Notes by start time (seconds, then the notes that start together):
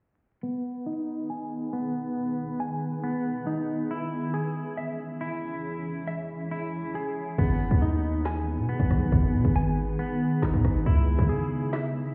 0.43 D#3 B3 G#4
0.86 D#4
1.30 G#5
1.73 B3
2.60 G#5
3.03 B3
3.47 D#4
3.91 E3 C#4 E4
4.34 G#4
4.77 E5
5.21 E4
6.08 E5
6.51 E4
6.95 G#4
7.38 G#1 D#3 B3 G#4, kick, closed hi-hat, crash
7.60 F#1
7.71 D#2, kick, closed hi-hat
7.78 D#4, closed hi-hat
7.85 closed hi-hat
8.25 G#5, snare, clap, closed hi-hat
8.58 B2, closed hi-hat
8.69 B3
8.80 G#1, kick
8.90 B1, cross-stick, closed hi-hat
9.12 G#1, kick, closed hi-hat
9.34 B2
9.45 G#1, kick, closed hi-hat
9.56 G#5, closed hi-hat
9.99 B3, closed hi-hat
10.32 closed hi-hat
10.42 G#1 D#4, snare, clap
10.54 G#2, kick, closed hi-hat
10.64 G#1, kick, cross-stick, open hi-hat
10.75 closed hi-hat
10.86 C#2 C#3 G#3 E4, kick, closed hi-hat
11.19 C#3, kick, closed hi-hat
11.26 G#4, closed hi-hat
11.33 closed hi-hat
11.73 E5, snare, clap, closed hi-hat
12.06 closed hi-hat